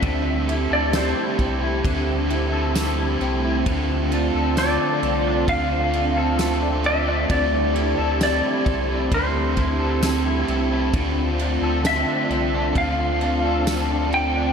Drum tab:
RD |xxxxxxxx|xxxxxxxx|xxxxxxxx|xxxxxxxx|
TB |--x---x-|--x---x-|--x---x-|--x---x-|
SD |--o---o-|--o---o-|--o---o-|--o---o-|
BD |o--oo---|o---o---|o--ooo--|o---o---|